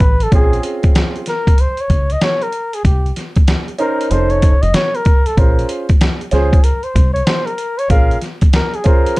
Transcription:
Already playing: flugelhorn B4
0.00 fingered electric bass A1, kick, closed hi-hat
0.20 flugelhorn A4, closed hi-hat
0.32 fingered electric bass A#1, upright piano C4 C#4 F4 G#4, flugelhorn G#4, kick, closed hi-hat
0.53 closed hi-hat
0.63 closed hi-hat
0.83 kick, closed hi-hat
0.95 snare, closed hi-hat
1.16 closed hi-hat
1.26 flugelhorn A#4, snare, closed hi-hat
1.47 kick, closed hi-hat
1.58 flugelhorn C5, closed hi-hat
1.77 flugelhorn C#5, closed hi-hat
1.90 fingered electric bass C#2, kick, closed hi-hat
2.10 flugelhorn D#5, closed hi-hat
2.21 flugelhorn C#5, snare, closed hi-hat
2.42 flugelhorn A#4, closed hi-hat
2.52 closed hi-hat
2.73 flugelhorn G#4, closed hi-hat
2.85 fingered electric bass C2, flugelhorn G4, kick, closed hi-hat
3.06 closed hi-hat
3.16 snare, closed hi-hat
3.36 kick, closed hi-hat
3.48 snare, closed hi-hat
3.68 closed hi-hat
3.78 upright piano C#4 D#4 A#4 C5, flugelhorn A#4, closed hi-hat
4.01 closed hi-hat
4.11 fingered electric bass F1, upright piano C#4 D#4 A4 C5, flugelhorn C5, closed hi-hat
4.30 flugelhorn C#5, closed hi-hat
4.42 kick, closed hi-hat
4.62 fingered electric bass F1, flugelhorn D#5, closed hi-hat
4.74 flugelhorn C#5, snare, closed hi-hat
4.95 flugelhorn A#4, closed hi-hat
5.05 kick, closed hi-hat
5.26 flugelhorn A4, closed hi-hat
5.37 fingered electric bass A#1, upright piano C#4 F4 G#4 C5, flugelhorn A#4, kick, closed hi-hat
5.59 closed hi-hat
5.69 closed hi-hat
5.89 kick, closed hi-hat
6.01 snare, closed hi-hat
6.21 closed hi-hat
6.31 fingered electric bass C#2, upright piano C#4 F4 G#4 C5, flugelhorn G#4, snare, closed hi-hat
6.53 kick, closed hi-hat
6.64 flugelhorn A#4, closed hi-hat
6.83 flugelhorn C5, closed hi-hat
6.95 fingered electric bass C2, kick, closed hi-hat
7.14 flugelhorn C#5, closed hi-hat
7.25 flugelhorn C5, snare, closed hi-hat
7.46 flugelhorn A#4, closed hi-hat
7.58 closed hi-hat
7.78 flugelhorn C#5, closed hi-hat
7.89 fingered electric bass A#1, upright piano C#4 F4 G#4 A#4, flugelhorn F5, kick, closed hi-hat
8.11 closed hi-hat
8.21 snare, closed hi-hat
8.41 kick, closed hi-hat
8.53 flugelhorn A#4, snare, closed hi-hat
8.74 flugelhorn G#4, closed hi-hat
8.84 upright piano C#4 F4 G#4 C5, flugelhorn A#4, kick, closed hi-hat
9.06 closed hi-hat
9.16 closed hi-hat

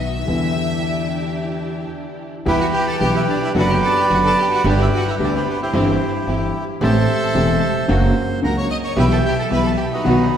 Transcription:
Already playing: upright bass B1, grand piano B1 B2 D#3 F#3 B3 F#4, string section B3 D#4 F#4
0.00 violin section E5
0.26 upright bass E2, grand piano E2 D3 E3 G3 B3, string section D4 E4 G4
0.30 grand piano E4
2.46 grand piano E2 E3 G3 B3 G4, upright bass E2, string section B3 E4 G4, violin section E4, bandoneon G4 B4 E5
2.60 violin section F#4, bandoneon F#5
2.74 violin section G4, bandoneon G5
2.87 violin section A4, bandoneon A5
2.99 upright bass B1, grand piano B1 B2 E3 G3 B3 G4, string section B3 E4 G4, violin section G4
3.03 bandoneon G5
3.14 violin section E4, bandoneon E5
3.28 violin section D4, bandoneon D5
3.42 violin section E4, bandoneon E5
3.55 upright bass F#1, grand piano F#2 D3 F#3 B3 F#4, string section B3 D4 F#4, violin section F#4, bandoneon F#5
3.59 bandoneon B4 D5
3.68 violin section G4
3.73 bandoneon G5
3.81 violin section A4
3.86 bandoneon A5
3.95 violin section G4
4.01 bandoneon G5
4.10 upright bass F#1, grand piano F#2 D3 F#3 B3 F#4, string section B3 D4 F#4, violin section F#4
4.14 bandoneon F#5
4.24 violin section A4, bandoneon A5
4.37 violin section G4
4.42 bandoneon G5
4.51 violin section F#4
4.56 bandoneon F#5
4.64 upright bass G1, grand piano G1 G2 D3 G3 B3 G4, string section B3 D4 G4, violin section D4
4.69 bandoneon G4 B4 D5
4.79 violin section E4, bandoneon E5
4.93 violin section F#4, bandoneon F#5
5.08 violin section E4, bandoneon E5
5.19 upright bass D2, grand piano D2 D3 G3 B3 G4, string section B3 D4 G4, violin section D4
5.24 bandoneon D5
5.34 violin section C4, bandoneon C5
5.47 violin section B3, bandoneon B4
5.62 violin section C4, bandoneon E4 G4 C5
5.73 upright bass G1, grand piano G1 G2 E3 G3 C4 G4, string section C4 E4 G4
6.27 upright bass G1, grand piano G1 G2 E3 G3 C4 G4, string section C4 E4 G4
6.81 upright bass A1, grand piano A1 A2 E3 A3 C4 G4, string section A3 C4 G4, violin section A4, bandoneon C5 E5 A5
7.34 upright bass E1, grand piano E1 E2 E3 A3 C4 G4, string section A3 C4 G4
7.88 upright bass F#1, grand piano F#2 C#3 F#3 A#3 F#4, string section A#3 C#4 F#4
8.42 grand piano C#2 C#3 F#3 A#3 F#4, upright bass C#2, string section A#3 C#4 F#4, violin section A#4, bandoneon A#5
8.57 violin section C#5, bandoneon C#6
8.71 violin section D#5, bandoneon D#6
8.84 violin section C#5, bandoneon C#6
8.96 upright bass B1, grand piano B1 B2 E3 G3 B3 G4, string section B3 E4 G4, violin section B4, bandoneon E5 G5 B5
9.12 violin section A4, bandoneon A5
9.26 violin section G4, bandoneon G5
9.39 violin section A4, bandoneon A5
9.50 grand piano B1 B2 E3 G3 B3 G4, upright bass B1, string section B3 E4 G4, violin section B4, bandoneon B5
9.64 violin section A4, bandoneon A5
9.77 violin section G4, bandoneon G5
9.91 violin section D#4, bandoneon F#4 B4 D#5
10.04 grand piano B1 B2 D#3 F#3 B3 F#4, upright bass B1, string section B3 D#4 F#4

